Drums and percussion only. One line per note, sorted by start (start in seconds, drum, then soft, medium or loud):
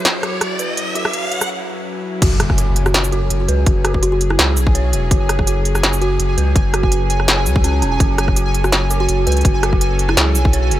0.05 snare loud
0.05 closed hi-hat medium
0.23 cross-stick medium
0.23 closed hi-hat soft
0.41 cross-stick medium
0.41 closed hi-hat medium
0.59 closed hi-hat medium
0.59 shaker soft
0.77 closed hi-hat medium
0.95 closed hi-hat medium
1.05 cross-stick medium
1.13 closed hi-hat medium
1.32 closed hi-hat medium
1.41 cross-stick medium
1.41 shaker medium
2.22 kick loud
2.22 closed hi-hat medium
2.22 crash loud
2.40 cross-stick medium
2.40 closed hi-hat medium
2.50 kick medium
2.50 cross-stick soft
2.58 closed hi-hat medium
2.58 shaker soft
2.76 closed hi-hat medium
2.86 cross-stick medium
2.86 shaker soft
2.94 snare loud
2.94 closed hi-hat medium
3.04 shaker medium
3.12 closed hi-hat soft
3.30 closed hi-hat medium
3.49 closed hi-hat medium
3.66 kick loud
3.66 closed hi-hat medium
3.85 cross-stick medium
3.85 closed hi-hat medium
3.94 kick medium
4.03 closed hi-hat medium
4.21 closed hi-hat medium
4.31 cross-stick medium
4.39 snare loud
4.39 closed hi-hat medium
4.57 closed hi-hat soft
4.57 shaker medium
4.67 kick loud
4.75 closed hi-hat medium
4.93 closed hi-hat medium
5.11 kick loud
5.11 closed hi-hat medium
5.29 cross-stick medium
5.29 closed hi-hat medium
5.39 kick medium
5.39 cross-stick soft
5.47 closed hi-hat medium
5.47 shaker soft
5.65 closed hi-hat medium
5.75 cross-stick medium
5.75 shaker soft
5.83 snare loud
5.83 closed hi-hat medium
5.93 shaker medium
6.02 closed hi-hat soft
6.20 closed hi-hat medium
6.38 closed hi-hat medium
6.56 kick loud
6.56 closed hi-hat medium
6.74 cross-stick medium
6.74 closed hi-hat medium
6.83 kick medium
6.92 closed hi-hat medium
7.10 closed hi-hat medium
7.20 cross-stick medium
7.28 snare loud
7.28 closed hi-hat medium
7.46 closed hi-hat soft
7.46 shaker medium
7.56 kick loud
7.64 closed hi-hat medium
7.82 closed hi-hat medium
8.00 kick loud
8.00 closed hi-hat medium
8.18 cross-stick medium
8.18 closed hi-hat medium
8.28 kick medium
8.28 cross-stick soft
8.36 closed hi-hat medium
8.36 shaker soft
8.54 closed hi-hat medium
8.64 cross-stick medium
8.64 shaker soft
8.72 snare loud
8.72 closed hi-hat medium
8.91 closed hi-hat soft
8.91 shaker medium
9.09 closed hi-hat medium
9.27 closed hi-hat medium
9.32 closed hi-hat medium
9.37 closed hi-hat soft
9.41 kick loud
9.41 closed hi-hat soft
9.45 closed hi-hat medium
9.63 cross-stick medium
9.63 closed hi-hat medium
9.73 kick medium
9.81 closed hi-hat medium
9.99 closed hi-hat medium
10.09 cross-stick medium
10.17 snare loud
10.17 closed hi-hat medium
10.35 closed hi-hat soft
10.35 shaker medium
10.45 kick loud
10.53 closed hi-hat medium
10.71 closed hi-hat medium